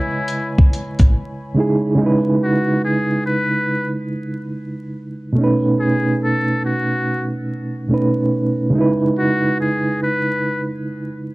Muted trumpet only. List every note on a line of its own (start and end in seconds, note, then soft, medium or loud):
0.00 0.54 E4 medium
2.43 2.80 F#4 medium
2.84 3.22 G#4 medium
3.26 3.91 B4 medium
5.79 6.18 G#4 medium
6.24 6.61 A4 medium
6.65 7.30 F#4 medium
9.18 9.56 F#4 medium
9.61 9.98 G#4 medium
10.03 10.68 B4 medium